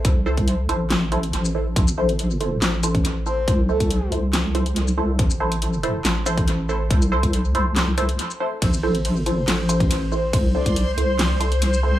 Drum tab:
RD |----------------|----------------|----------------|----------------|
HH |x--xx-x-x-xxx---|x--xx-x-x-xxx---|x--xx-x-x-xxx---|x--xx-x-x-xxx---|
SH |-------------x--|-x------x-x-----|-------------x--|-x------x-x-----|
CP |--------x-------|--------x-------|--------x-------|--------x-------|
SD |--------o-------|--------o-------|--------o-------|--------o-------|
BD |o--o------------|o----------o----|o--o------------|o----------o----|

RD |----------------|x---x---x---x---|x---x---x---x---|
HH |x--xx-x-x-xxx---|x--xx-x-x-xxx---|x--xx-x-x-xxx---|
SH |-x-----------x--|-x------x-x-----|-------------x--|
CP |--------x-------|--------x-------|--------x-------|
SD |--------o-------|--------o-------|--------o-------|
BD |o--o------------|o----------o----|o--o------------|